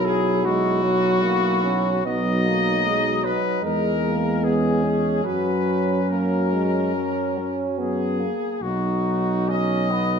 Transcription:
Already playing: tuba B1, trombone F#3, euphonium F#3, flugelhorn E4
0.06 trumpet section G#4
0.46 trombone G#3, trumpet section F#4
0.83 trombone F#3
1.23 trombone A#3
1.63 trombone C#4
2.04 tuba B1, euphonium F#3, trombone B3, flugelhorn D#4, trumpet section D#5
2.46 trombone A#3
2.86 trombone G#3
3.24 trombone F#3, trumpet section B4
3.62 tuba E2, trombone G#3, euphonium G#3, trumpet section A#4
4.04 trombone A#3
4.43 trombone B3, flugelhorn C#4, trumpet section G#4
4.83 trombone C#4
5.24 tuba F#2, euphonium F#3, trombone F#3, trumpet section B4
6.10 trombone A#3, trumpet section A#4
6.52 trombone G#3
6.95 trombone F#3
7.38 trombone C#4
7.78 trombone B3, trumpet section G#4
8.20 trombone A#3
8.61 tuba B1, euphonium F#3, flugelhorn D#4, trumpet section F#4
9.49 flugelhorn C#4, trumpet section D#5
9.91 flugelhorn B3

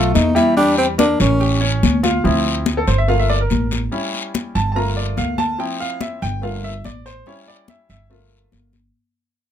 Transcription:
Already playing: upright bass B1, upright piano A3 A4, tenor saxophone F4
0.14 upright bass E2, tenor saxophone D#4, high conga, short guiro
0.35 upright piano G3 G4, tenor saxophone E4, high conga, short guiro
0.57 upright piano G3 G4, tenor saxophone D4, high conga, long guiro
0.78 tenor saxophone C4, high conga
0.98 upright piano A#3 A#4, tenor saxophone D4, high conga, short guiro
1.20 upright bass A1, tenor saxophone C#4, high conga, short guiro
1.40 upright piano G4 G5, high conga, long guiro
1.61 upright piano C#4 C#5, high conga
1.83 upright bass D2, high conga, short guiro
2.03 upright piano F4 F5, high conga, short guiro
2.24 upright bass D2, upright piano F3 C4 E4, high conga, long guiro
2.46 high conga
2.66 high conga, short guiro
2.77 upright piano A4
2.87 upright bass G1, upright piano C5, high conga, short guiro
2.98 upright piano E5
3.08 upright piano A3 A#3 F4 F5, high conga, long guiro
3.19 upright piano E5
3.30 upright piano D5, high conga
3.41 upright piano A#4
3.50 upright bass A1, high conga, short guiro
3.71 high conga, short guiro
3.92 upright piano G3 C#4 E4, high conga, long guiro
4.14 high conga
4.34 high conga, short guiro
4.55 upright bass G1, upright piano A5, high conga, short guiro
4.72 upright piano A3 A5
4.76 upright piano A#3 F4 A#5, high conga, long guiro
4.97 upright piano D5, high conga
5.17 upright bass D2, upright piano F5, high conga, short guiro
5.38 upright piano A5, high conga, short guiro
5.59 upright piano F3 C4 E4 G5, high conga, long guiro
5.80 upright piano F5, high conga
6.01 upright piano E5, high conga, short guiro
6.22 upright bass G1, upright piano G5, high conga, short guiro
6.42 upright piano A3 A#3 F4 F5, high conga, long guiro
6.64 upright piano E5, high conga
6.84 upright bass A1, upright piano D5, high conga, short guiro
7.06 upright piano C5, short guiro
7.26 upright piano G3 C#4 E4 C#5, high conga, long guiro
7.47 upright piano D5, high conga
7.68 upright piano E5, high conga, short guiro
7.89 upright bass G1, upright piano E5, high conga, short guiro
8.10 upright piano A3 A#3 F4, high conga, long guiro
8.32 high conga
8.52 upright bass G1, high conga, short guiro
8.73 high conga, short guiro

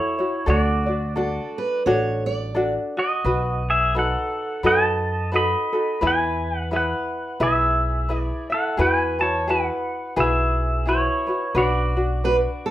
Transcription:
Already playing: ukulele E4 F#4 A4 C#5, pedal steel guitar E4 C#5
0.18 ukulele E4 F#4 C#5
0.46 upright bass D2, ukulele D4 F#4 A4 D5, pedal steel guitar D5
0.51 pedal steel guitar F#4
0.86 ukulele D4 F#4 D5
1.16 ukulele D4 F#4 A4 D5, steel-string acoustic guitar A4
1.58 steel-string acoustic guitar B4
1.86 upright bass A1, ukulele D4 F#4 A4, steel-string acoustic guitar C#5
2.26 steel-string acoustic guitar D5
2.55 ukulele D4 F#4 A4 D5
2.97 ukulele F#4, pedal steel guitar F#4 D#5
3.25 upright bass B1, ukulele F#4 B4
3.70 pedal steel guitar G#4 E5
3.95 ukulele D#4 F#4 A4 B4, pedal steel guitar A4
3.99 pedal steel guitar F#5
4.63 upright bass F#2, ukulele D#4 F#4 A4 B4, pedal steel guitar D#5 A5
5.32 ukulele D#4 F#4 A4 B4, pedal steel guitar D#5
5.36 pedal steel guitar B5
5.73 ukulele D#4 F#4 A4
6.01 upright bass E2, ukulele E4 G#4 B4 E5
6.07 pedal steel guitar B4 G#5
6.58 pedal steel guitar F#5
6.71 ukulele E4 G#4 B4 E5
6.76 pedal steel guitar B4 F#5
7.40 upright bass B1, ukulele E4 G#4 B4 E5, pedal steel guitar G#4 E5
8.09 ukulele E4 G#4 B4 E5
8.21 pedal steel guitar D5
8.50 ukulele E4 E5, pedal steel guitar F#5
8.54 pedal steel guitar A4
8.77 upright bass E2, ukulele E4 F#4 G#4 B4
8.81 pedal steel guitar B4 G#5
9.19 ukulele E4 F#4 B4, pedal steel guitar C#5 A5
9.48 ukulele E4 F#4 G#4 B4, pedal steel guitar B4 F#5
10.16 upright bass B1, ukulele E4 F#4 G#4 B4, pedal steel guitar E5
10.22 pedal steel guitar G#4
10.86 ukulele E4 F#4 G#4 B4, pedal steel guitar E4 C#5
11.27 ukulele E4 F#4 B4
11.55 upright bass B1, ukulele D4 F#4 B4, pedal steel guitar D5
11.59 pedal steel guitar F#4
11.97 ukulele D4 F#4
12.24 ukulele D4 F#4 B4, steel-string acoustic guitar B4
12.66 steel-string acoustic guitar A4

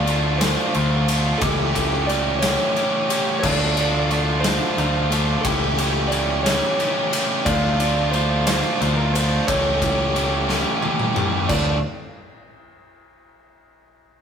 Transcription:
Already playing: picked electric bass D2, analog synth pad F4 D5 A5 C6, tine electric piano F4, clean electric guitar D5
0.06 overdriven electric guitar D3 F3 A3 D4 F4, ride
0.38 overdriven electric guitar D3 F3 A3 D4 F4, clean electric guitar C5, snare, ride
0.74 picked electric bass D2, overdriven electric guitar D3 F3 A3 D4 F4, ride
1.07 overdriven electric guitar D3 F3 A3 D4 F4, ride
1.38 picked electric bass C#2, overdriven electric guitar C#3 E3 A3 C#4 G4, tine electric piano G4, clean electric guitar A4, kick, ride
1.42 analog synth pad G4 E5 C#6
1.74 overdriven electric guitar C#3 E3 A3 C#4 G4, kick, ride
2.07 overdriven electric guitar C#3 E3 A3 C#4 G4, clean electric guitar D5, ride
2.39 overdriven electric guitar C#3, clean electric guitar C#5, snare, ride
2.43 overdriven electric guitar E3 A3 C#4 G4
2.76 overdriven electric guitar C#3 E3 A3 C#4 G4, ride
3.09 overdriven electric guitar C#3 E3 A3 C#4 G4, tine electric piano G4, ride
3.40 overdriven electric guitar D3 F3 A3 D4 F4, analog synth pad F4 D5 A5 C6, tine electric piano A4, clean electric guitar C#5, kick
3.44 picked electric bass D2, crash
3.51 clean electric guitar D5
3.76 overdriven electric guitar D3 F3 A3 D4 F4, ride
4.09 overdriven electric guitar D3 F3 A3 D4 F4, ride
4.41 overdriven electric guitar D3 A3 D4 F4, clean electric guitar C5, snare, ride
4.45 overdriven electric guitar F3
4.77 picked electric bass D2, overdriven electric guitar D3 F3 A3 D4 F4, ride
5.09 overdriven electric guitar D3 F3 A3 D4 F4, ride
5.41 overdriven electric guitar C#3 E3 A3 C#4 G4, analog synth pad G4 E5 C#6, tine electric piano G4, clean electric guitar A4, kick, ride
5.45 picked electric bass C#2
5.76 overdriven electric guitar C#3 E3 A3 C#4 G4, ride
6.08 overdriven electric guitar C#3 E3 A3 C#4 G4, clean electric guitar D5
6.12 ride
6.43 overdriven electric guitar C#3 E3 A3 C#4 G4, clean electric guitar C#5, snare, ride
6.78 overdriven electric guitar C#3 E3 A3 C#4 G4, ride
7.12 overdriven electric guitar C#3 E3 A3 C#4 G4, ride
7.45 picked electric bass D2, overdriven electric guitar D3 F3 A3 D4 F4, tine electric piano F4, analog synth pad F4 D5 C6, clean electric guitar D5, kick, ride
7.79 overdriven electric guitar D3 F3 A3 D4 F4, clean electric guitar D5, ride
8.11 overdriven electric guitar D3 F3 A3 D4 F4, clean electric guitar C5, ride
8.46 overdriven electric guitar D3 F3 A3 D4 F4, clean electric guitar C5, snare, ride
8.81 picked electric bass D2, overdriven electric guitar D3 F3 A3 D4 F4, ride
8.97 clean electric guitar A#4
9.13 overdriven electric guitar D3 F3 A3 D4 F4, clean electric guitar C5, ride
9.47 picked electric bass C#2, overdriven electric guitar C#3 E3 A3 C#4 G4, analog synth pad G4 E5 C#6, tine electric piano A4, clean electric guitar C#5, kick, ride
9.82 overdriven electric guitar C#3 E3 A3 C#4 G4, kick, ride
10.15 overdriven electric guitar C#3 E3 A3 C#4 G4, ride
10.49 overdriven electric guitar C#3 E3 A3 C#4 G4, snare
10.82 overdriven electric guitar C#3 E3 A3 C#4 G4, high tom
10.99 mid tom
11.15 overdriven electric guitar C#3 E3 A3 C#4 G4, tine electric piano G4, mid tom
11.48 picked electric bass D2, overdriven electric guitar D3 F3 A3 D4 F4 A4, analog synth pad C4 A4 D5 F5, tine electric piano F4, clean electric guitar D5, kick, crash

